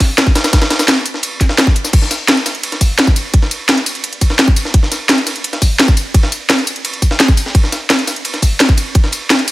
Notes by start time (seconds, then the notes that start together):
0.00 kick, snare, closed hi-hat, open hi-hat
0.18 snare, closed hi-hat, ride, tambourine
0.27 kick
0.35 snare, open hi-hat, ride, tambourine
0.44 snare, ride, tambourine
0.53 kick, snare, closed hi-hat, ride, tambourine
0.62 snare, ride
0.70 snare, closed hi-hat, ride, tambourine
0.79 snare, ride, tambourine
0.88 snare, closed hi-hat, ride, tambourine
1.05 open hi-hat, ride, tambourine
1.14 snare
1.23 closed hi-hat, ride, tambourine
1.41 kick, snare, closed hi-hat, ride, tambourine
1.49 snare
1.58 snare, closed hi-hat, ride, tambourine
1.67 kick
1.76 open hi-hat, ride, tambourine
1.84 snare, tambourine
1.93 kick, closed hi-hat, crash, ride
2.02 snare
2.11 snare, closed hi-hat, ride, tambourine
2.28 snare, closed hi-hat, ride, tambourine
2.37 closed hi-hat
2.46 snare, closed hi-hat, ride, tambourine
2.55 closed hi-hat
2.63 closed hi-hat, ride
2.72 snare, closed hi-hat
2.81 kick, closed hi-hat, open hi-hat, ride, tambourine
2.99 snare, closed hi-hat, ride
3.07 kick, tambourine
3.16 closed hi-hat, ride, tambourine
3.34 kick, closed hi-hat, ride
3.42 snare
3.51 closed hi-hat, ride, tambourine
3.69 snare, closed hi-hat, ride, tambourine
3.77 closed hi-hat
3.86 open hi-hat, ride, tambourine
3.95 closed hi-hat
4.04 closed hi-hat, ride
4.13 closed hi-hat
4.21 kick, closed hi-hat, ride, tambourine
4.30 snare
4.39 snare, closed hi-hat, ride
4.48 kick, tambourine
4.56 closed hi-hat, ride, tambourine
4.65 snare
4.74 kick, closed hi-hat, ride
4.83 snare
4.92 snare, closed hi-hat, ride, tambourine
5.09 snare, closed hi-hat, ride, tambourine
5.18 closed hi-hat
5.27 snare, closed hi-hat, ride, tambourine
5.36 closed hi-hat
5.44 closed hi-hat, ride
5.53 snare, closed hi-hat
5.62 kick, closed hi-hat, open hi-hat, ride, tambourine
5.79 snare, closed hi-hat, ride
5.88 kick, tambourine
5.97 closed hi-hat, ride, tambourine
6.14 kick, closed hi-hat, ride
6.23 snare
6.32 closed hi-hat, ride, tambourine
6.50 snare, closed hi-hat, ride, tambourine
6.58 closed hi-hat
6.67 open hi-hat, ride, tambourine
6.76 closed hi-hat
6.85 closed hi-hat, ride
6.94 closed hi-hat
7.02 kick, closed hi-hat, ride, tambourine
7.11 snare
7.20 snare, closed hi-hat, ride
7.28 kick, tambourine
7.37 closed hi-hat, ride, tambourine
7.46 snare
7.55 kick, closed hi-hat, ride
7.64 snare
7.72 snare, closed hi-hat, ride, tambourine
7.90 snare, closed hi-hat, ride, tambourine
7.99 closed hi-hat
8.07 snare, closed hi-hat, ride, tambourine
8.16 closed hi-hat
8.25 closed hi-hat, ride
8.34 snare, closed hi-hat
8.42 kick, closed hi-hat, open hi-hat, ride, tambourine
8.60 snare, closed hi-hat, ride
8.69 kick, tambourine
8.77 closed hi-hat, ride, tambourine
8.95 kick, closed hi-hat, ride
9.04 snare
9.12 closed hi-hat, ride, tambourine
9.30 snare, closed hi-hat, ride, tambourine
9.39 closed hi-hat
9.48 open hi-hat, ride, tambourine